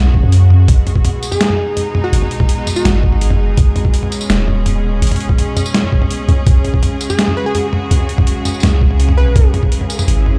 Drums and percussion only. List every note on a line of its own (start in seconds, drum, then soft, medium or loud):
0.05 mid tom medium
0.14 kick medium
0.32 closed hi-hat medium
0.50 mid tom medium
0.68 kick loud
0.68 closed hi-hat medium
0.87 closed hi-hat soft
0.87 mid tom medium
0.96 kick medium
1.05 closed hi-hat medium
1.05 mid tom medium
1.23 closed hi-hat soft
1.23 tambourine medium
1.32 mid tom medium
1.32 tambourine medium
1.41 snare loud
1.41 closed hi-hat medium
1.50 mid tom medium
1.77 closed hi-hat medium
1.77 mid tom medium
1.95 mid tom medium
2.13 closed hi-hat medium
2.22 mid tom medium
2.31 closed hi-hat soft
2.40 kick medium
2.40 mid tom medium
2.49 closed hi-hat medium
2.67 closed hi-hat soft
2.67 mid tom medium
2.67 tambourine medium
2.76 tambourine medium
2.85 snare loud
2.85 closed hi-hat medium
2.85 mid tom medium
3.03 kick medium
3.12 mid tom medium
3.21 closed hi-hat medium
3.30 mid tom medium
3.57 kick loud
3.57 closed hi-hat medium
3.57 mid tom medium
3.76 closed hi-hat soft
3.76 mid tom medium
3.85 kick medium
3.94 closed hi-hat medium
4.03 mid tom medium
4.12 closed hi-hat soft
4.12 tambourine medium
4.21 tambourine medium
4.30 snare loud
4.30 closed hi-hat medium
4.48 mid tom medium
4.66 closed hi-hat medium
4.66 mid tom medium
5.02 closed hi-hat medium
5.07 closed hi-hat medium
5.11 closed hi-hat soft
5.11 mid tom medium
5.16 closed hi-hat soft
5.20 closed hi-hat soft
5.29 kick medium
5.38 closed hi-hat medium
5.38 mid tom medium
5.57 closed hi-hat soft
5.57 mid tom medium
5.57 tambourine medium
5.66 tambourine medium
5.74 snare loud
5.74 closed hi-hat medium
5.84 mid tom medium
5.92 kick medium
6.02 mid tom medium
6.11 closed hi-hat medium
6.29 closed hi-hat soft
6.29 mid tom soft
6.47 kick loud
6.47 closed hi-hat medium
6.65 closed hi-hat soft
6.65 mid tom soft
6.74 kick medium
6.83 closed hi-hat medium
6.83 mid tom medium
7.01 closed hi-hat soft
7.01 tambourine medium
7.10 mid tom medium
7.10 tambourine medium
7.19 snare loud
7.19 closed hi-hat medium
7.28 mid tom medium
7.55 closed hi-hat medium
7.55 mid tom soft
7.73 mid tom medium
7.91 closed hi-hat medium
8.00 mid tom medium
8.09 closed hi-hat soft
8.18 kick medium
8.18 mid tom medium
8.27 closed hi-hat medium
8.45 closed hi-hat soft
8.45 mid tom medium
8.45 tambourine medium
8.54 tambourine soft
8.60 snare loud
8.60 closed hi-hat medium
8.60 mid tom medium
8.60 tambourine soft
8.66 tambourine medium
8.81 kick medium
8.91 mid tom medium
9.00 closed hi-hat medium
9.09 mid tom medium
9.36 kick loud
9.36 closed hi-hat medium
9.36 mid tom medium
9.54 closed hi-hat soft
9.54 mid tom medium
9.63 kick medium
9.72 closed hi-hat medium
9.81 mid tom medium
9.90 closed hi-hat soft
9.90 tambourine medium
9.99 mid tom medium
9.99 tambourine medium
10.08 closed hi-hat medium
10.26 mid tom medium